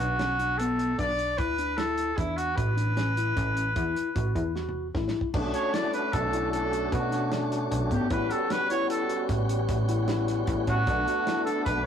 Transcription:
Already playing: F#4
0.00 B1 D4
0.19 C#4, snare, closed hi-hat
0.39 D4, closed hi-hat
0.58 B3 A4, closed hi-hat
0.79 closed hi-hat
0.98 B1 D4 D5, kick, closed hi-hat
1.19 closed hi-hat
1.38 D2 E4 B4, kick, closed hi-hat
1.58 D4, closed hi-hat
1.77 E4 A4, snare, closed hi-hat
1.98 closed hi-hat
2.17 E2 D4 E4, kick, closed hi-hat
2.37 F#4, closed hi-hat
2.56 A1 F#4 B4, kick, closed hi-hat
2.77 D4, closed hi-hat
2.97 C#4, snare, closed hi-hat
3.17 E4, closed hi-hat
3.37 A1 C#4, kick, snare, closed hi-hat
3.57 closed hi-hat
3.76 E2 E4, kick, closed hi-hat
3.96 closed hi-hat
4.16 A1 F#4, kick, closed hi-hat
4.35 E2 E4, kick, closed hi-hat
4.55 F#4, snare
4.69 high tom
4.95 A1 E4, kick, snare
5.08 snare
5.21 kick
5.34 B1 A3 C#4 D4 F#4, kick, crash
5.54 F#4 C#5, closed hi-hat
5.73 E4 D5, snare, closed hi-hat
5.93 D4 B4, closed hi-hat
6.13 B1 A4, kick, closed hi-hat
6.33 E4, closed hi-hat
6.52 A4, closed hi-hat
6.72 F#4, closed hi-hat
6.92 B2 F#4, kick, closed hi-hat
7.12 D4, snare, closed hi-hat
7.31 D4, snare, closed hi-hat
7.52 snare, closed hi-hat
7.71 B1 D4, closed hi-hat
7.91 G#1 B3 G4, kick, closed hi-hat
8.10 A1 G3 B3 C#4 E4 F#4 B4, kick, closed hi-hat
8.30 G4 A4, closed hi-hat
8.50 F#4 B4, snare, closed hi-hat
8.70 E4 C#5, closed hi-hat
8.90 A4, closed hi-hat
9.09 F#4, closed hi-hat
9.29 A1, kick, snare, closed hi-hat
9.49 G4, closed hi-hat
9.69 A1, kick, snare, closed hi-hat
9.89 E4, closed hi-hat
10.08 E4, snare, closed hi-hat
10.28 snare, closed hi-hat
10.47 A1 E4, kick, closed hi-hat
10.67 A2 C#4 F#4, kick, closed hi-hat
10.87 B1 A3 B3 D4 F#4, kick, closed hi-hat
11.07 F#4, closed hi-hat
11.27 E4, snare, closed hi-hat
11.45 D4 A4, closed hi-hat
11.65 B1 B4, kick, closed hi-hat

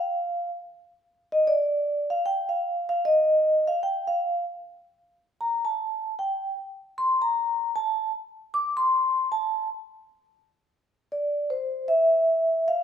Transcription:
Already playing: F5
1.32 D#5
1.47 D5
2.10 F5
2.26 G5
2.49 F5
2.89 F5
3.05 D#5
3.68 F5
3.83 G5
4.07 F5
5.41 A#5
5.65 A5
6.19 G5
6.98 C6
7.22 A#5
7.76 A5
8.54 D6
8.77 C6
9.32 A5
11.12 D5
11.50 C5
11.88 E5
12.68 F5

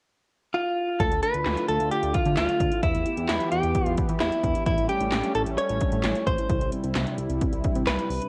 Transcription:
0.54 F4
1.00 D2 D3 A3 F4 A4, kick, closed hi-hat
1.11 D2, closed hi-hat
1.23 D4 B4, closed hi-hat
1.34 D2 D4, closed hi-hat
1.46 D2 D4, snare, clap, closed hi-hat
1.57 E4, closed hi-hat
1.68 D2 F4 A4, closed hi-hat
1.80 D2, closed hi-hat
1.91 D4 G4, closed hi-hat
2.03 D2 F4, closed hi-hat
2.14 E4 F4, kick, closed hi-hat
2.26 D3, closed hi-hat
2.37 D2 F4, snare, clap, closed hi-hat
2.49 F4, closed hi-hat
2.60 D2 D4, kick, closed hi-hat
2.72 E4, closed hi-hat
2.83 E2 E3 B3 E4 G4, kick, closed hi-hat
2.95 E2, closed hi-hat
3.06 E4, closed hi-hat
3.17 E2 E4, closed hi-hat
3.29 E2 E4, snare, clap, closed hi-hat
3.40 F4, closed hi-hat
3.52 E2 G4, closed hi-hat
3.63 E2, closed hi-hat
3.75 E4, kick, closed hi-hat
3.86 E2 G4, closed hi-hat
3.98 F4, kick, closed hi-hat
4.09 E3, closed hi-hat
4.20 E2 E4 G4, snare, clap, closed hi-hat
4.32 G4, closed hi-hat
4.43 E2 D4, kick, closed hi-hat
4.55 E4, closed hi-hat
4.66 A1 G3 A3 C#4 E4, kick, closed hi-hat
4.78 A1, closed hi-hat
4.89 C#4 G4, closed hi-hat
5.00 A1 C#4, closed hi-hat
5.12 A1 C#4, snare, clap, closed hi-hat
5.24 D4, closed hi-hat
5.35 A1 E4 A4, closed hi-hat
5.46 A1, closed hi-hat
5.58 C#4 C#5, closed hi-hat
5.69 A1 E4, closed hi-hat
5.81 D4, kick, closed hi-hat
5.92 A2, closed hi-hat
6.04 A1 E4, snare, clap, closed hi-hat
6.15 E4, closed hi-hat
6.27 A1 C#4 C5, kick, closed hi-hat
6.38 E4, closed hi-hat
6.49 C2 C3 G3 E4, kick, closed hi-hat
6.61 C2, closed hi-hat
6.72 C4, closed hi-hat
6.84 C2 C4, closed hi-hat
6.95 C2 C4, snare, clap, closed hi-hat
7.07 D4, closed hi-hat
7.18 C2 E4, closed hi-hat
7.30 C2, closed hi-hat
7.41 C4, kick, closed hi-hat
7.53 C2 E4, closed hi-hat
7.64 D4, kick, closed hi-hat
7.75 C3, closed hi-hat
7.87 C2 E4 B4, snare, clap, closed hi-hat
7.98 E4, closed hi-hat
8.10 C2 C4, open hi-hat
8.21 D4, closed hi-hat

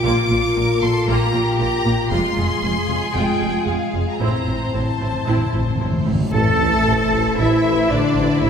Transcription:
Already playing: A#3 F4
0.03 A#1 A#2 A#3 F4 D6
0.30 A#1 A#2 A#3 F4
0.56 A#1 A#2 A#3 F4 A#4
0.80 A#1 A#2 A#3 F4 A4 C6
1.07 A#1 A#2 A#3 F4 G4 A#5
1.33 A#1 A#2 A#3 F4
1.59 A#1 A#2 A#3 F4 A#5
1.85 A#1 A#2 A#3 F4
2.11 F1 F2 G#3 F4 C6
2.35 F1 F2 G#3 F4 G#4
2.63 F1 F2 G#3 F4
2.89 F1 F2 G#3 F4
3.14 F1 F2 G#3 F4 G5
3.41 F1 F2 G#3 F4
3.66 F1 F2 G#3 F4 F5
3.93 F1 F2 G#3 F4
4.09 A#5
4.20 A1 A2 C4 E4 C5 A#5, reverse cymbal
4.29 A2
4.37 A2
4.44 A1 A2 C4 E4
4.52 A2
4.59 A2
4.67 A2
4.73 A1 A2 C4 E4 A5
4.82 A2
4.90 A2
4.98 A1 A2 C4 E4
5.05 A2
5.13 A2
5.22 A2
5.27 A1 A2 C4 E4
5.37 A2
5.44 A2
5.52 A1 A2 C4 E4
5.60 A2
5.68 A2
5.75 A2
5.80 A1 A2 C4 E4
5.91 A2
5.98 A2
6.06 A1 A2 C4 E4
6.13 A2
6.20 A2
6.32 A1 A2 A3 E4 A4 C5 E5 A5, sub drop
6.60 A1
6.86 A1
7.12 A1
7.37 A1 E3 E4 E5
7.64 A1
7.89 A1 D3 D4 D5
8.16 A1
8.41 A1 E3 E4 E5

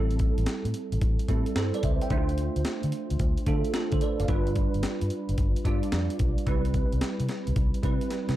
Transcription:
Already playing: A1 G3 C4 E4 A4
0.11 closed hi-hat
0.19 kick, closed hi-hat
0.38 A1, closed hi-hat
0.46 snare, closed hi-hat
0.65 A2, closed hi-hat
0.74 closed hi-hat
0.92 A1, closed hi-hat
1.01 A1, kick, closed hi-hat
1.19 closed hi-hat
1.28 A2 G3 C4 E4 A4, kick, closed hi-hat
1.46 closed hi-hat
1.56 G2 A4 C5, snare, closed hi-hat
1.74 B4 D5, closed hi-hat
1.83 C#2 C5 E5, kick, closed hi-hat
2.01 E5 G5, closed hi-hat
2.10 D2 A3 D4 E4 C5, kick, closed hi-hat
2.18 F4
2.29 closed hi-hat
2.38 closed hi-hat
2.56 D2, closed hi-hat
2.65 snare, closed hi-hat
2.83 D3, closed hi-hat
2.92 closed hi-hat
3.10 D2, closed hi-hat
3.19 D2, kick, closed hi-hat
3.38 closed hi-hat
3.46 D3 A3 D4 F4 A4, kick, closed hi-hat
3.65 closed hi-hat
3.74 F4 A4, snare, closed hi-hat
3.92 D3 A4 C5, kick, closed hi-hat
4.01 B4 D5, closed hi-hat
4.20 F#1 D5 F5, closed hi-hat
4.28 G1 G3 D4 F4 B4, kick, closed hi-hat
4.47 closed hi-hat
4.56 kick, closed hi-hat
4.74 G1, closed hi-hat
4.83 muted fingered electric bass stroke, snare, closed hi-hat
5.01 G2, closed hi-hat
5.10 closed hi-hat
5.29 G1, closed hi-hat
5.38 G1, kick, closed hi-hat
5.56 closed hi-hat
5.65 G2 G3 D4 F4 D5, kick, closed hi-hat
5.83 closed hi-hat
5.92 F2, snare, closed hi-hat
6.10 closed hi-hat
6.19 B1, kick, closed hi-hat
6.38 closed hi-hat
6.47 C2 G3 C4 E4 B4, kick, closed hi-hat
6.65 closed hi-hat
6.74 kick, closed hi-hat
6.92 C2, closed hi-hat
7.01 snare, closed hi-hat
7.20 C3, closed hi-hat
7.29 snare, closed hi-hat
7.47 C2, closed hi-hat
7.56 C2, kick, closed hi-hat
7.74 closed hi-hat
7.83 C3 G3 C4 E4 B4, kick, closed hi-hat
8.01 closed hi-hat
8.11 snare, closed hi-hat
8.29 C3, snare, closed hi-hat

